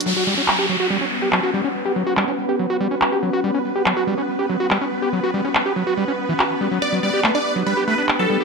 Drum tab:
CC |x-------|--------|--------|--------|
CP |--x---x-|--x---x-|--x---x-|--x---x-|

CC |--------|
CP |--x---x-|